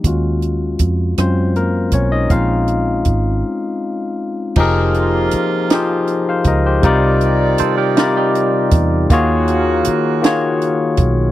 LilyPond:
<<
  \new Staff \with { instrumentName = "Clean electric guitar" } { \time 6/8 \key f \minor \tempo 4. = 53 r2. | r2. | r2. | r4 <a' c''>16 <g' bes'>8 <ees' g'>4~ <ees' g'>16 |
r2. | }
  \new Staff \with { instrumentName = "Tine electric piano" } { \time 6/8 \key f \minor << { r4. <c' c''>8 <bes bes'>8 <des' des''>16 <ees' ees''>16 | <f' f''>2 r4 | r2 r16 <c'' f''>16 <bes' ees''>16 <g' c''>16~ | <g' c''>16 r2 r8. |
r2. | } \\ { <aes des' f' ges'>4. <ges aes des' f'>8 r4 | <aes c' des' ees'>2. | <f ees' g' aes' bes'>4 r8 <f ees' g' aes' c''>4 r8 | <c g ees' f' bes' d''>4 r8 <c g ees' f' bes' d''>4 r8 |
<ees bes f' ges' aes' des''>4 r8 <ees bes f' ges' aes' des''>4 r8 | } >> }
  \new Staff \with { instrumentName = "Horn section" } { \time 6/8 \key f \minor r2. | r2. | <c bes f'>2~ <c bes f'>8 r8 | <ees g' d''>2~ <ees g' d''>8 r8 |
<des bes ges'>2~ <des bes ges'>8 r8 | }
  \new Staff \with { instrumentName = "Fingered electric bass" } { \clef bass \time 6/8 \key f \minor ees,4 f,8 ges,4 b,,8 | bes,,4 aes,,8 r4. | f,,4 r4. des,8 | c,4 r4. e,8 |
ees,4 r4. b,,8 | }
  \new DrumStaff \with { instrumentName = "Drums" } \drummode { \time 6/8 <hh bd>8 hh8 <hh bd>8 <hh ss>8 hh8 <hh bd>8 | <hh bd>8 hh8 <hh bd>8 r4. | <cymc bd>8 hh8 hh8 <hh sn>8 hh8 <hh bd>8 | <hh bd>8 hh8 hh8 <hh sn>8 hh8 <hh bd>8 |
<hh bd>8 hh8 hh8 <hh sn>8 hh8 <hh bd>8 | }
>>